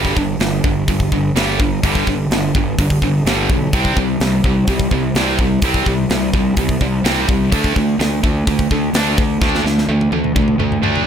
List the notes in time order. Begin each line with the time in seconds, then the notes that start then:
Already playing: G1 G2 D3 G3
0.05 kick
0.17 G1 G2 D3, kick
0.39 G1 G2 D3, snare, open hi-hat
0.64 G1 G2 D3, kick
0.87 G1 G2 D3, kick, open hi-hat
1.00 kick
1.12 G1 G2 D3, kick
1.35 G1 G2 D3 G3, snare, open hi-hat
1.60 G2 D3, kick
1.83 G1 G2 D3 G3, kick, open hi-hat
1.95 kick
2.07 G1 G2 D3, kick
2.29 G1 G2 D3, snare, open hi-hat
2.55 G1 G2 D3, kick
2.78 G1 G2 D3, kick, open hi-hat
2.90 kick
3.02 G1 G2 D3, kick
3.25 G1 G2 D3 G3, snare, open hi-hat
3.50 B1 G2 D3, kick
3.73 C2 C3 G3 C4, kick, open hi-hat
3.85 kick
3.97 C2 C3 G3, kick
4.20 C2 C3 G3, snare, open hi-hat
4.44 C2 C3 G3, kick
4.67 C2 C3 G3, kick, open hi-hat
4.79 kick
4.91 C2 C3 G3, kick
5.14 C2 C3 G3 C4, snare, open hi-hat
5.39 C3 G3, kick
5.62 C2 C3 G3 C4, kick, open hi-hat
5.74 kick
5.86 C2 C3 G3, kick
6.09 C2 C3 G3, snare, open hi-hat
6.33 C2 C3 G3, kick
6.57 C2 C3 G3, kick, open hi-hat
6.69 kick
6.81 C2 C3 G3, kick
7.04 C2 C3 G3 C4, snare, open hi-hat
7.29 C2 C3 G3, kick
7.52 D2 D3 A3 D4, kick, open hi-hat
7.64 kick
7.75 D2 D3 A3, kick
7.99 D2 D3 A3, snare, open hi-hat
8.23 D2 D3 A3, kick
8.47 D2 D3 A3, kick, open hi-hat
8.59 kick
8.71 D2 D3 A3, kick
8.93 D2 D3 A3 D4, snare, open hi-hat
9.18 D3 A3, kick
9.41 D2 D3 A3 D4, kick, snare
9.55 snare
9.64 D2 D3 A3, snare
9.78 snare
9.88 D2 D3 A3, high tom
10.01 high tom
10.12 D2 D3 A3, high tom
10.24 mid tom
10.36 D2 D3 A3, kick, mid tom
10.48 mid tom
10.59 D2 D3 A3, mid tom
10.72 mid tom
10.82 D2 D3 A3 D4, mid tom
10.96 floor tom